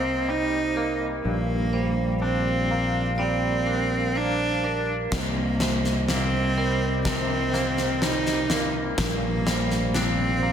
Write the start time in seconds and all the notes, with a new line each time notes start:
Already playing: C2 C3 G3 A#3 C4 G4 C5 D#5
0.28 G3 D#4
0.76 A#3 A#4
1.24 A#1 G2 A#3 D4 A#4 F5
1.73 G3 C5
2.22 C4 D4
2.71 A#3
3.18 G3 C4 D5
3.67 D4 A#4
4.16 A#3 D4 C5
4.64 D4 A#4
5.11 C2 A#3 C4 A#4 D#5, kick, snare
5.60 C3 C5, snare
5.85 snare
6.08 A#3 C4, snare
6.57 G3 A#4
7.05 C3 C4, kick, snare
7.53 A#3 C5, snare
7.77 snare
8.02 G3 D#4, snare
8.26 snare
8.49 A#3 A#4, snare
8.98 A#1 G2 A#3 D4 F5, kick, snare
9.46 G3 C5, snare
9.71 snare
9.94 C4 D4, snare
10.42 A#3